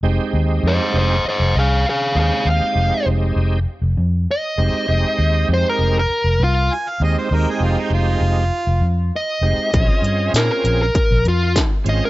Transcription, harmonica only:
\new Staff \with { instrumentName = "Harmonica" } { \time 4/4 \key f \minor \tempo 4 = 99 r1 | r1 | r2. aes''16 f''16 ees''16 c''16 | bes'16 aes'16 f'16 ees'16 f'4.~ f'16 r4 r16 |
r1 | }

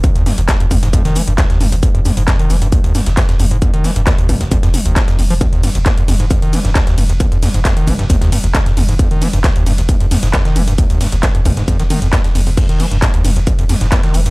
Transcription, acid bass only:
\new Staff \with { instrumentName = "Acid bass" } { \clef bass \time 4/4 \key f \minor \tempo 4 = 134 ees,16 ees,16 g,16 ees,16 f,16 f,16 f,16 aes,16 f,16 ees16 f16 g,16 ees,16 ees,16 g,16 ees,16 | f,16 f,16 f,16 aes,16 f,16 ees16 f16 g,16 ees,16 ees,16 g,16 ees,16 f,16 f,16 f,16 aes,16 | f,16 ees16 f16 g,16 ees,16 ees,16 g,16 ees,16 f,16 f,16 f,,16 ees,16 f,,16 f,16 f,16 f16 | ees,16 ees,16 g,16 ees,16 f,16 f,16 f,16 aes,16 f,16 ees16 f16 g,16 ees,16 ees,16 g,16 ees,16 |
f,16 f,16 f,16 aes,16 f,16 ees16 f16 g,16 ees,16 ees,16 g,16 ees,16 f,16 f,16 f,16 aes,16 | f,16 ees16 f16 g,16 ees,16 ees,16 g,16 ees,16 f,16 f,16 f,16 aes,16 f,16 ees16 f16 g,16 | ees,16 ees,16 g,16 ees,16 f,16 f,16 f,16 aes,16 f,16 ees16 ees16 f,16 f,16 f,16 f,16 f,16 | f,16 ees16 f16 g,16 aes,16 ees,16 g,16 ees,16 f,16 f,16 f,16 aes,16 f,16 ees16 f16 g,16 | }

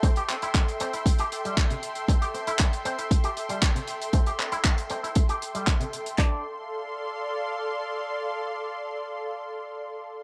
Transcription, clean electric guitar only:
\new Staff \with { instrumentName = "Clean electric guitar" } { \time 4/4 \key d \minor \tempo 4 = 117 c'16 g'16 c'16 e'16 r8 c'16 e'16 r16 g'16 r16 g16 r16 c16 r8 | c'16 g'16 c'16 e'16 r8 c'16 e'16 r16 g'16 r16 g16 r16 c16 r8 | c'16 g'16 c'16 e'16 r8 c'16 e'16 r16 g'16 r16 g16 r16 c16 r8 | d'8 r2. r8 |
r1 | }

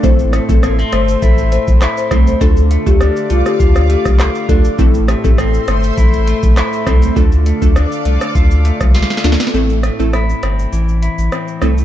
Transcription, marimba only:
\new Staff \with { instrumentName = "Marimba" } { \time 4/4 \key a \phrygian \tempo 4 = 101 c''8 r16 a'16 r8 c''16 c''16 a'16 r16 c''16 r8 c''16 r16 c''16 | a'8 r16 g'16 r8 f'16 g'16 f'16 r16 g'16 r16 a'16 r16 a'16 r16 | r1 | r1 |
r1 | }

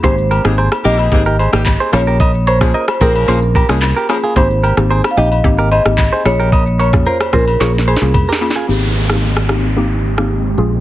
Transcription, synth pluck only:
\new Staff \with { instrumentName = "Synth pluck" } { \time 4/4 \key aes \major \tempo 4 = 111 <bes c' ees' g'>8. <bes c' ees' g'>8. <bes c' ees' g'>8 <bes c' ees' g'>16 r8 <bes c' ees' g'>16 r8 <bes des' f' aes'>8 | r8. <bes des' f' aes'>8. <bes des' f' aes'>8 <bes des' f' aes'>16 r8 <bes des' f' aes'>16 r8 <bes des' f' aes'>16 r16 | <bes c' ees' g'>8. <bes c' ees' g'>8. <bes c' ees' g'>8 <bes c' ees' g'>16 r8 <bes c' ees' g'>16 r8 <bes des' f' aes'>16 r16 | r8. <bes des' f' aes'>8. <bes des' f' aes'>8 <bes des' f' aes'>16 r8 <bes des' f' aes'>16 r8 <bes des' f' aes'>16 r16 |
<bes c' ees' g'>8. <bes c' ees' g'>8. <bes c' ees' g'>8 <bes c' ees' g'>16 r8 <bes c' ees' g'>16 r8 <bes des' f' aes'>16 r16 | }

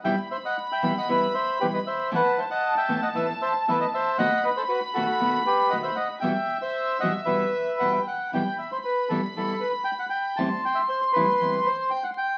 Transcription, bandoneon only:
\new Staff \with { instrumentName = "Bandoneon" } { \time 4/4 \key e \minor \tempo 4 = 116 << { g''8 e''16 fis''8 g''8 fis''16 e''8 e''8 b'16 dis''16 e''8 | fis''8 e''16 fis''8 g''8 fis''16 e''8 e''8 e''16 dis''16 e''8 | fis''8 dis''16 c''16 b'8 a'4 b'8 fis''16 e''16 fis''8 | g''8. e''8. fis''8 e''4 fis''16 e''16 fis''8 |
g''8 e''16 c''16 b'8 a'8 a'8 b'8 g''16 fis''16 g''8 | a''8 g''16 e''16 c''8 b'4 c''8 g''16 fis''16 g''8 | } \\ { e''8 c''16 dis''8 e''8 dis''16 b'8 c''8 g'16 b'16 c''8 | b'8 c''16 dis''8 e''8 dis''16 b'8 c''8 b'16 b'16 c''8 | dis''8 b'16 a'16 fis'8 fis'4 g'8 dis''16 c''16 dis''8 | e''8. c''8. dis''8 b'4. r8 |
r1 | r1 | } >> }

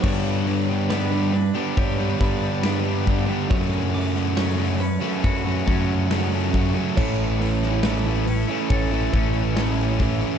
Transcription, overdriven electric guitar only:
\new Staff \with { instrumentName = "Overdriven electric guitar" } { \time 4/4 \key g \lydian \tempo 4 = 69 <g, d g b d'>8 <d g b d'>8 <g, d g b d'>16 <g b d'>8 <g b d'>8 <g b d'>16 <d g b d'>8 <g, d g b d'>8 <d g b d'>16 <g b d'>16 | <fis, cis fis a cis'>8 <cis fis a cis'>8 <fis, cis fis a cis'>16 <fis a cis'>8 <fis a cis'>8 <fis a cis'>16 <cis fis a cis'>8 <fis, cis fis a cis'>8 <cis fis a cis'>16 <fis a cis'>16 | <a, e a cis' e'>8 <e a cis' e'>8 <a, e a cis' e'>16 <a cis' e'>8 <a cis' e'>8 <a cis' e'>16 <e a cis' e'>8 <a, e a cis' e'>8 <e a cis' e'>16 <a cis' e'>16 | }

